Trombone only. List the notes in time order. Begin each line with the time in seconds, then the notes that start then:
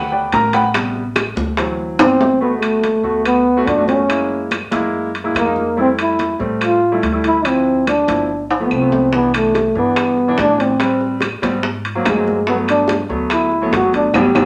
2.01 C4
2.42 B3
2.58 G#3
2.63 A3
3.25 B3
3.67 D4
3.87 C#4
5.39 A#3
5.81 C4
6.02 E4
6.63 F4
7.26 E4
7.46 C4
7.88 D4
8.65 B3
8.73 C4
9.15 B3
9.36 A3
9.78 B3
10.40 D4
10.61 C4
12.07 G#3
12.48 B3
12.70 D4
13.33 E4
13.75 F#4
13.96 D4
14.14 G4